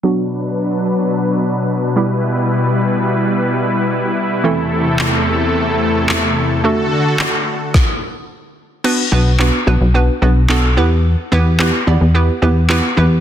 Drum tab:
CC |--------|--------|--------|--------|
CP |--------|--------|--x---x-|--x-----|
SD |--------|--------|--------|----o---|
BD |--------|--------|--------|----o---|

CC |x-------|--------|
CP |--x---x-|--x---x-|
SD |--------|--------|
BD |--------|--------|